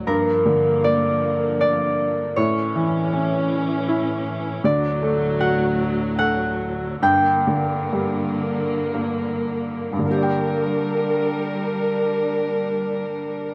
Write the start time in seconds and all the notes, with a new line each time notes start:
0.06 G2 F3 A#3 A#4
0.45 D3
0.84 A#3 D5
1.61 D4 D5
2.36 A2 E3 C#4 C#5
2.75 E3
3.13 C#4
3.88 E4
4.63 D2 A2 D3 F#3 D5
5.02 A3
5.40 F#4 F#5
6.19 A4 F#5
7.02 G2 D3 A#3 G5
7.47 D3
7.93 G3
8.94 A#3
9.93 G2
9.99 D3
10.05 G3 A#3 D4 A#4
10.11 G4
10.17 D5
10.23 G5